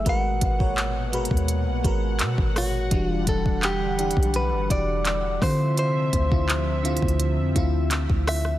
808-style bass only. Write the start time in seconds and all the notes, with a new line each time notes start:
0.06 G#1
0.42 G#1
1.31 D#2
1.67 B1
1.84 G#1
2.21 B2
2.38 G#1
2.92 E1
3.27 E1
4.17 B1
4.52 G1
4.70 E1
5.42 D3
6.13 D2
7.03 D2
7.38 F2
7.56 D2
8.10 D2